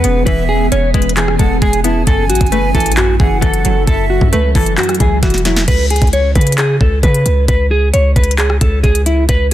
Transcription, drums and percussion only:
0.04 closed hi-hat medium
0.27 kick loud
0.27 closed hi-hat medium
0.72 closed hi-hat medium
0.94 kick loud
0.94 closed hi-hat soft
1.02 closed hi-hat medium
1.09 closed hi-hat medium
1.17 clap loud
1.17 closed hi-hat medium
1.28 cross-stick loud
1.39 kick medium
1.39 closed hi-hat medium
1.62 kick loud
1.62 closed hi-hat soft
1.73 closed hi-hat medium
1.84 closed hi-hat medium
2.07 kick loud
2.07 closed hi-hat medium
2.30 closed hi-hat medium
2.35 closed hi-hat medium
2.41 kick loud
2.41 closed hi-hat medium
2.46 closed hi-hat soft
2.52 closed hi-hat medium
2.75 kick loud
2.75 closed hi-hat soft
2.80 closed hi-hat medium
2.86 closed hi-hat medium
2.92 closed hi-hat medium
2.97 clap loud
2.97 closed hi-hat medium
3.20 kick loud
3.42 kick loud
3.42 closed hi-hat medium
3.54 closed hi-hat medium
3.65 closed hi-hat medium
3.87 kick loud
3.87 closed hi-hat medium
4.21 kick loud
4.33 closed hi-hat medium
4.55 kick loud
4.55 closed hi-hat medium
4.55 open hi-hat medium
4.66 closed hi-hat medium
4.78 clap loud
4.78 closed hi-hat medium
4.83 closed hi-hat medium
4.89 cross-stick loud
4.89 closed hi-hat medium
4.95 closed hi-hat medium
5.00 kick loud
5.00 closed hi-hat medium
5.23 kick loud
5.23 snare medium
5.23 closed hi-hat medium
5.30 snare medium
5.30 closed hi-hat medium
5.38 closed hi-hat medium
5.45 snare loud
5.45 closed hi-hat medium
5.57 snare loud
5.68 kick loud
5.68 closed hi-hat medium
5.68 crash loud
5.90 closed hi-hat medium
5.96 closed hi-hat medium
6.02 kick medium
6.02 closed hi-hat medium
6.07 closed hi-hat soft
6.13 closed hi-hat medium
6.35 kick loud
6.35 closed hi-hat soft
6.41 closed hi-hat medium
6.47 closed hi-hat medium
6.52 closed hi-hat medium
6.58 clap loud
6.58 closed hi-hat medium
6.81 kick medium
7.03 kick loud
7.03 closed hi-hat medium
7.14 closed hi-hat medium
7.26 closed hi-hat medium
7.48 kick loud
7.48 closed hi-hat medium
7.94 closed hi-hat medium
8.16 kick loud
8.16 closed hi-hat soft
8.24 closed hi-hat medium
8.31 closed hi-hat medium
8.38 clap loud
8.38 closed hi-hat medium
8.50 cross-stick loud
8.61 kick loud
8.61 closed hi-hat medium
8.84 kick loud
8.84 closed hi-hat soft
8.95 closed hi-hat medium
9.06 closed hi-hat medium
9.29 kick loud
9.29 closed hi-hat medium

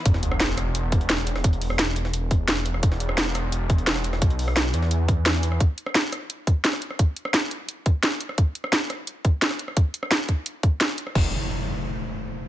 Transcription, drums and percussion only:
0.05 kick loud
0.05 closed hi-hat medium
0.14 snare soft
0.23 closed hi-hat medium
0.32 cross-stick medium
0.40 snare loud
0.40 closed hi-hat medium
0.49 snare soft
0.58 cross-stick soft
0.58 closed hi-hat medium
0.75 closed hi-hat medium
0.92 kick loud
0.92 closed hi-hat medium
1.01 closed hi-hat soft
1.10 snare loud
1.10 closed hi-hat medium
1.18 cross-stick soft
1.27 closed hi-hat medium
1.36 cross-stick soft
1.36 snare soft
1.44 kick loud
1.44 closed hi-hat medium
1.53 closed hi-hat soft
1.62 closed hi-hat medium
1.62 open hi-hat medium
1.70 cross-stick medium
1.79 snare loud
1.79 closed hi-hat medium
1.96 closed hi-hat medium
2.05 snare soft
2.13 closed hi-hat loud
2.13 closed hi-hat medium
2.31 kick loud
2.31 closed hi-hat medium
2.48 snare loud
2.48 closed hi-hat medium
2.66 closed hi-hat medium
2.74 cross-stick soft
2.83 kick loud
2.83 closed hi-hat medium
2.92 snare soft
3.00 closed hi-hat medium
3.09 cross-stick medium
3.18 snare loud
3.18 closed hi-hat medium
3.26 snare soft
3.35 cross-stick soft
3.35 closed hi-hat medium
3.52 closed hi-hat medium
3.70 kick loud
3.70 closed hi-hat medium
3.78 closed hi-hat soft
3.87 snare loud
3.87 closed hi-hat medium
3.96 cross-stick soft
4.04 closed hi-hat medium
4.13 cross-stick soft
4.13 snare soft
4.22 kick loud
4.22 closed hi-hat medium
4.30 closed hi-hat soft
4.39 closed hi-hat medium
4.39 open hi-hat medium
4.48 cross-stick medium
4.56 snare loud
4.56 closed hi-hat medium
4.74 closed hi-hat medium
4.83 snare soft
4.91 closed hi-hat medium
5.08 kick loud
5.08 closed hi-hat medium
5.26 snare loud
5.26 closed hi-hat medium
5.43 closed hi-hat medium
5.52 cross-stick soft
5.60 kick loud
5.60 closed hi-hat medium
5.78 closed hi-hat medium
5.86 cross-stick medium
5.95 snare loud
5.95 closed hi-hat medium
6.12 cross-stick soft
6.12 closed hi-hat medium
6.30 closed hi-hat medium
6.47 kick loud
6.47 closed hi-hat medium
6.64 snare loud
6.64 closed hi-hat medium
6.73 cross-stick soft
6.82 closed hi-hat medium
6.91 cross-stick soft
6.99 kick loud
6.99 closed hi-hat medium
7.16 closed hi-hat medium
7.25 cross-stick medium
7.34 snare loud
7.34 closed hi-hat medium
7.51 closed hi-hat medium
7.69 closed hi-hat medium
7.86 kick loud
7.86 closed hi-hat medium
8.03 snare loud
8.03 closed hi-hat medium
8.21 closed hi-hat medium
8.29 cross-stick soft
8.38 kick loud
8.38 closed hi-hat medium
8.55 closed hi-hat medium
8.64 cross-stick medium
8.73 snare loud
8.73 closed hi-hat loud
8.90 cross-stick soft
8.90 closed hi-hat medium
9.07 closed hi-hat medium
9.25 kick loud
9.25 closed hi-hat medium
9.42 snare loud
9.42 closed hi-hat medium
9.51 cross-stick soft
9.59 closed hi-hat medium
9.68 cross-stick soft
9.77 kick loud
9.77 closed hi-hat loud
9.94 closed hi-hat medium
10.03 cross-stick medium
10.11 snare loud
10.11 closed hi-hat medium
10.29 kick medium
10.29 closed hi-hat medium
10.46 closed hi-hat loud
10.63 kick loud
10.63 closed hi-hat medium
10.81 snare loud
10.81 closed hi-hat loud
10.98 closed hi-hat medium
11.07 cross-stick soft
11.15 kick loud
11.15 crash medium

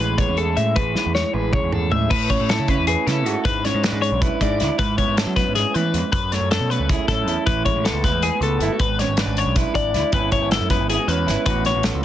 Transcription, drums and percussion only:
0.18 kick medium
0.18 closed hi-hat medium
0.37 closed hi-hat medium
0.57 closed hi-hat medium
0.76 kick medium
0.76 closed hi-hat medium
0.96 snare medium
1.15 snare medium
1.53 kick medium
1.53 mid tom medium
1.72 mid tom medium
1.92 floor tom medium
2.11 kick loud
2.11 crash loud
2.29 kick medium
2.29 closed hi-hat medium
2.49 snare loud
2.49 closed hi-hat loud
2.68 kick medium
2.68 closed hi-hat medium
2.87 closed hi-hat medium
3.07 snare soft
3.07 closed hi-hat medium
3.26 closed hi-hat medium
3.45 kick loud
3.45 closed hi-hat medium
3.65 snare soft
3.65 closed hi-hat medium
3.83 snare loud
3.83 closed hi-hat medium
4.03 closed hi-hat medium
4.22 kick loud
4.22 closed hi-hat medium
4.41 kick medium
4.41 closed hi-hat medium
4.60 snare soft
4.60 closed hi-hat medium
4.79 kick loud
4.79 closed hi-hat loud
4.98 kick medium
4.98 closed hi-hat medium
5.17 snare loud
5.17 closed hi-hat medium
5.36 kick medium
5.36 snare soft
5.36 closed hi-hat medium
5.55 snare soft
5.55 closed hi-hat medium
5.75 closed hi-hat medium
5.94 closed hi-hat medium
6.13 kick loud
6.13 closed hi-hat medium
6.32 snare soft
6.32 closed hi-hat medium
6.51 snare loud
6.51 closed hi-hat medium
6.71 closed hi-hat medium
6.89 kick loud
6.89 closed hi-hat medium
7.08 kick medium
7.08 snare soft
7.08 closed hi-hat medium
7.28 closed hi-hat medium
7.47 kick loud
7.47 closed hi-hat medium
7.66 kick medium
7.66 closed hi-hat medium
7.85 snare loud
7.85 closed hi-hat loud
8.04 kick medium
8.04 snare soft
8.04 closed hi-hat medium
8.22 closed hi-hat medium
8.42 closed hi-hat medium
8.60 closed hi-hat medium
8.79 kick loud
8.79 closed hi-hat medium
8.99 snare soft
8.99 closed hi-hat medium
9.17 snare loud
9.17 closed hi-hat loud
9.37 closed hi-hat medium
9.56 kick medium
9.56 closed hi-hat medium
9.75 kick medium
9.75 closed hi-hat medium
9.94 snare soft
9.94 closed hi-hat medium
10.12 kick loud
10.12 closed hi-hat medium
10.32 kick medium
10.32 closed hi-hat medium
10.51 snare loud
10.51 closed hi-hat loud
10.70 kick medium
10.70 snare soft
10.70 closed hi-hat medium
10.89 closed hi-hat medium
11.08 closed hi-hat medium
11.28 snare soft
11.28 closed hi-hat medium
11.46 kick loud
11.46 closed hi-hat medium
11.65 snare soft
11.65 closed hi-hat medium
11.83 snare loud
11.83 closed hi-hat loud

